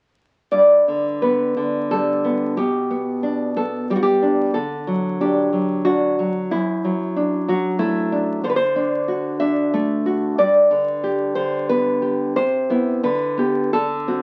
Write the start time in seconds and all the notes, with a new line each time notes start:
0.52 G2 D5
0.88 D3
1.22 B3 B4
1.57 D3
1.91 G3 A4
2.24 B3
2.57 B2 G4
2.90 B3
3.23 D4
3.56 B3 A4
3.90 G3 G4
3.96 F#4
4.03 G4
4.22 D4
4.54 D3 A4
4.87 F#3
5.21 D4 G4
5.53 F#3
5.85 D4 F#4
6.19 F#3
6.51 F#2 E4
6.84 F#3
7.16 D4
7.48 F#3 F#4
7.79 A3 E4
8.12 D4
8.44 D3 C5
8.50 B4
8.56 C5
8.76 D4
9.08 F#4
9.40 D4 E5
9.74 A3
10.06 F#4
10.38 G2 D5
10.71 D3
11.04 G4
11.35 D3 C5
11.69 B3 B4
12.02 G4
12.36 C3 C5
12.70 B3 E4
13.03 D3 B4
13.37 B3 G4
13.73 D3 A4
14.08 C4 F#4